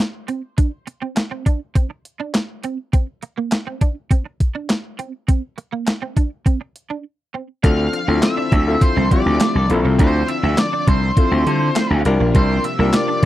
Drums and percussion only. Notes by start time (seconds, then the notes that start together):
0.00 snare
0.28 closed hi-hat
0.58 kick, closed hi-hat
0.87 closed hi-hat
1.16 snare, clap, closed hi-hat
1.46 kick, closed hi-hat
1.75 kick, closed hi-hat
2.05 closed hi-hat
2.34 snare, clap, closed hi-hat
2.64 closed hi-hat
2.93 kick, closed hi-hat
3.22 closed hi-hat
3.52 snare, clap, closed hi-hat
3.81 kick, closed hi-hat
4.11 kick, closed hi-hat
4.40 kick, closed hi-hat
4.69 snare, clap, closed hi-hat
4.99 closed hi-hat
5.28 kick, closed hi-hat
5.58 closed hi-hat
5.87 snare, clap, closed hi-hat
6.17 kick, closed hi-hat
6.46 kick, closed hi-hat
6.76 closed hi-hat
7.64 kick, closed hi-hat
7.93 closed hi-hat
8.22 snare, clap, closed hi-hat
8.52 kick, closed hi-hat
8.81 kick, closed hi-hat
9.11 kick, closed hi-hat
9.40 snare, clap, closed hi-hat
9.70 closed hi-hat
9.99 kick, closed hi-hat
10.28 closed hi-hat
10.58 snare, clap, closed hi-hat
10.87 kick, closed hi-hat
11.17 kick, closed hi-hat
11.47 closed hi-hat
11.76 snare, clap, closed hi-hat
12.05 closed hi-hat
12.35 kick, closed hi-hat
12.64 closed hi-hat
12.93 snare, clap, closed hi-hat